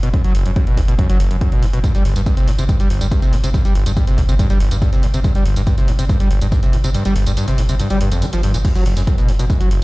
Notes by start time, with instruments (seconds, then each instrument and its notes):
0.03 sub bass F#1, acid bass B2, closed hi-hat
0.14 acid bass F#2, kick, closed hi-hat
0.24 sub bass F#1, acid bass F#3, closed hi-hat
0.35 sub bass F#1, acid bass F#1, open hi-hat
0.46 sub bass F#1, acid bass F#2, closed hi-hat
0.56 acid bass F#2, kick, closed hi-hat
0.67 sub bass F#1, acid bass B2, closed hi-hat
0.77 sub bass F#1, acid bass F#2, kick, open hi-hat
0.88 sub bass F#1, acid bass B2, closed hi-hat
0.99 acid bass F#2, kick, closed hi-hat
1.09 sub bass F#1, acid bass F#3, closed hi-hat
1.20 acid bass F#1, sub bass F#1, open hi-hat
1.31 sub bass F#1, acid bass F#2, closed hi-hat
1.41 acid bass F#2, kick, closed hi-hat
1.52 sub bass F#1, acid bass B2, closed hi-hat
1.63 sub bass F#1, acid bass F#2, open hi-hat
1.73 sub bass F#1, acid bass B2, closed hi-hat
1.84 acid bass G2, kick, closed hi-hat, tambourine
1.95 sub bass G1, acid bass G3, closed hi-hat, tambourine
2.05 sub bass G1, acid bass G1, open hi-hat
2.16 sub bass G1, acid bass G2, closed hi-hat, tambourine
2.26 acid bass G2, kick, closed hi-hat, tambourine
2.37 sub bass G1, acid bass C3, closed hi-hat, tambourine
2.48 sub bass G1, acid bass G2, open hi-hat
2.58 sub bass G1, acid bass C3, closed hi-hat, tambourine
2.69 acid bass G2, kick, closed hi-hat, tambourine
2.80 sub bass G1, acid bass G3, closed hi-hat, tambourine
2.90 sub bass G1, acid bass G1, open hi-hat
3.01 sub bass G1, acid bass G2, closed hi-hat, tambourine
3.12 acid bass G2, kick, closed hi-hat, tambourine
3.22 sub bass G1, acid bass C3, closed hi-hat, tambourine
3.33 sub bass G1, acid bass G2, open hi-hat
3.44 sub bass G1, acid bass C3, closed hi-hat, tambourine
3.54 acid bass G2, kick, closed hi-hat, tambourine
3.65 sub bass G1, acid bass G3, closed hi-hat, tambourine
3.75 sub bass G1, acid bass G1, open hi-hat
3.86 sub bass G1, acid bass G2, closed hi-hat, tambourine
3.97 acid bass G2, kick, closed hi-hat, tambourine
4.07 sub bass G1, acid bass C3, closed hi-hat, tambourine
4.18 sub bass G1, acid bass G2, kick, open hi-hat
4.29 sub bass G1, acid bass C3, closed hi-hat, tambourine
4.39 acid bass G2, kick, closed hi-hat, tambourine
4.50 sub bass G1, acid bass G3, closed hi-hat, tambourine
4.60 sub bass G1, acid bass G1, open hi-hat
4.71 sub bass G1, acid bass G2, closed hi-hat, tambourine
4.82 acid bass G2, kick, closed hi-hat, tambourine
4.93 sub bass G1, acid bass C3, closed hi-hat, tambourine
5.03 sub bass G1, acid bass G2, open hi-hat
5.14 sub bass G1, acid bass C3, closed hi-hat, tambourine
5.24 acid bass G2, kick, closed hi-hat, tambourine
5.35 sub bass G1, acid bass G3, closed hi-hat, tambourine
5.46 sub bass G1, acid bass G1, open hi-hat
5.56 sub bass G1, acid bass G2, closed hi-hat, tambourine
5.67 acid bass G2, kick, closed hi-hat, tambourine
5.78 sub bass G1, acid bass C3, closed hi-hat, tambourine
5.88 sub bass G1, acid bass G2, open hi-hat
5.99 sub bass G1, acid bass C3, closed hi-hat, tambourine
6.09 acid bass G2, kick, closed hi-hat, tambourine
6.20 sub bass G1, acid bass G3, closed hi-hat, tambourine
6.31 acid bass G1, sub bass G1, open hi-hat
6.41 sub bass G1, acid bass G2, closed hi-hat, tambourine
6.52 acid bass G2, kick, closed hi-hat, tambourine
6.63 sub bass G1, acid bass C3, closed hi-hat, tambourine
6.73 sub bass G1, acid bass G2, open hi-hat
6.84 sub bass G1, acid bass C3, closed hi-hat, tambourine
6.94 acid bass G2, closed hi-hat, tambourine
7.05 sub bass G1, acid bass G3, closed hi-hat, tambourine
7.16 sub bass G1, acid bass G1, open hi-hat
7.26 sub bass G1, acid bass G2, closed hi-hat, tambourine
7.37 acid bass G2, closed hi-hat, tambourine
7.48 sub bass G1, acid bass C3, closed hi-hat, tambourine
7.58 sub bass G1, acid bass G2, open hi-hat
7.69 sub bass G1, acid bass C3, closed hi-hat, tambourine
7.80 acid bass G2, closed hi-hat, tambourine
7.90 sub bass G1, acid bass G3, closed hi-hat, tambourine
8.01 sub bass G1, acid bass G2, open hi-hat
8.12 sub bass G1, acid bass F2, closed hi-hat, tambourine
8.22 acid bass G3, closed hi-hat, tambourine
8.33 sub bass G1, acid bass F3, closed hi-hat, tambourine
8.43 sub bass G1, acid bass G2, open hi-hat
8.54 sub bass G1, acid bass A#2, closed hi-hat, tambourine
8.65 acid bass F#2, kick, closed hi-hat, crash, tambourine
8.75 sub bass F#1, acid bass F#3, closed hi-hat, tambourine
8.86 sub bass F#1, acid bass F#1, open hi-hat
8.97 sub bass F#1, acid bass F#2, closed hi-hat, tambourine
9.07 acid bass F#2, kick, closed hi-hat, tambourine
9.18 sub bass F#1, acid bass B2, closed hi-hat, tambourine
9.28 sub bass F#1, acid bass F#2, open hi-hat
9.39 sub bass F#1, acid bass B2, closed hi-hat, tambourine
9.50 acid bass F#2, kick, closed hi-hat, tambourine
9.60 sub bass F#1, acid bass F#3, closed hi-hat, tambourine
9.71 sub bass F#1, acid bass F#1, open hi-hat